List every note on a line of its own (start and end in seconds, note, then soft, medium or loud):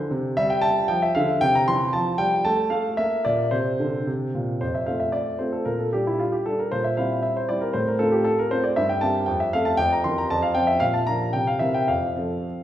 0.00 0.11 D3 medium
0.00 0.11 C5 medium
0.11 0.36 C3 medium
0.37 0.75 G3 medium
0.37 0.50 E5 loud
0.50 0.63 G5 medium
0.62 0.88 A5 loud
0.88 1.14 F3 medium
0.88 1.02 G5 medium
1.02 1.15 E5 medium
1.15 1.40 D3 medium
1.15 1.41 F5 loud
1.41 1.66 C3 medium
1.41 1.54 G5 loud
1.55 1.68 A#5 medium
1.68 1.93 E3 medium
1.68 1.93 C6 loud
1.93 2.18 F3 medium
1.93 2.19 A5 medium
2.18 2.44 G3 medium
2.18 2.45 G5 loud
2.45 2.69 A3 medium
2.45 2.71 A5 loud
2.70 2.97 A3 medium
2.70 2.98 F5 medium
2.97 3.24 A#3 medium
2.97 3.25 E5 medium
3.25 3.52 A#2 medium
3.25 3.52 D5 medium
3.51 3.79 C3 medium
3.51 4.07 C5 medium
3.80 4.06 D3 medium
4.07 4.33 C3 medium
4.35 4.60 A#2 medium
4.61 4.87 F2 soft
4.61 4.75 C5 medium
4.75 4.88 E5 medium
4.86 5.37 A3 soft
4.86 5.37 C4 soft
4.86 5.37 F4 soft
4.86 5.00 F5 medium
5.00 5.14 E5 medium
5.12 5.40 D5 medium
5.39 5.64 A3 soft
5.39 5.64 C4 soft
5.39 5.65 F4 soft
5.39 5.53 C5 medium
5.52 5.67 A4 medium
5.65 5.92 A#2 medium
5.65 5.79 A#4 medium
5.80 5.93 A4 medium
5.93 6.42 G3 soft
5.93 6.42 D4 soft
5.93 6.06 G4 medium
6.07 6.20 E4 medium
6.19 6.33 F4 medium
6.32 6.45 G4 medium
6.46 6.69 G3 soft
6.46 6.70 D4 soft
6.46 6.58 A4 medium
6.59 6.72 A#4 medium
6.72 6.97 A#2 medium
6.72 6.84 C5 medium
6.84 6.97 E5 medium
6.97 7.45 G3 soft
6.97 7.45 C4 soft
6.97 7.45 E4 soft
6.97 7.23 F5 medium
7.23 7.35 E5 medium
7.37 7.49 C5 medium
7.49 7.73 G3 soft
7.49 7.73 C4 soft
7.49 7.73 E4 soft
7.49 7.61 D5 medium
7.61 7.74 A#4 medium
7.73 7.99 A2 medium
7.73 7.87 C5 medium
7.88 8.00 A#4 medium
7.99 8.47 A3 soft
7.99 8.47 C4 soft
7.99 8.47 F4 medium
7.99 8.12 A4 medium
8.12 8.25 G4 medium
8.24 8.38 A4 medium
8.39 8.51 A#4 medium
8.51 8.75 A3 soft
8.51 8.75 C4 soft
8.51 8.75 F4 medium
8.51 8.64 C5 medium
8.64 8.77 D5 medium
8.76 9.02 G2 medium
8.76 8.89 E5 medium
8.89 9.02 G5 medium
9.01 9.26 A#3 soft
9.01 9.26 C4 soft
9.01 9.26 G4 medium
9.01 9.27 A5 medium
9.26 9.53 F2 medium
9.26 9.40 G5 medium
9.40 9.53 E5 medium
9.53 9.77 A3 soft
9.53 9.77 C4 soft
9.53 9.77 A4 medium
9.53 9.66 F5 loud
9.65 9.79 A5 medium
9.77 10.04 F2 medium
9.77 9.91 G5 loud
9.92 10.05 A#5 medium
10.04 10.28 E3 medium
10.04 10.28 C4 medium
10.04 10.29 A#4 medium
10.04 10.17 C6 medium
10.18 10.31 A#5 medium
10.30 10.56 F2 medium
10.30 10.43 A5 loud
10.42 10.56 F5 medium
10.55 10.79 F3 soft
10.55 10.80 C4 soft
10.55 10.80 C5 soft
10.55 10.68 G5 medium
10.67 10.81 E5 medium
10.80 11.07 A#2 medium
10.80 10.94 F5 loud
10.94 11.08 A5 medium
11.07 11.32 F3 soft
11.07 11.32 D4 soft
11.07 11.33 A#4 soft
11.07 11.34 A#5 medium
11.33 11.61 C3 medium
11.33 11.48 G5 medium
11.47 11.62 F5 medium
11.59 11.86 E3 soft
11.59 11.87 C4 soft
11.59 11.86 A#4 medium
11.59 11.74 E5 medium
11.74 11.89 G5 medium
11.88 12.16 F2 medium
11.88 12.63 F5 medium
12.16 12.63 F3 soft
12.16 12.63 C4 soft
12.16 12.63 A4 soft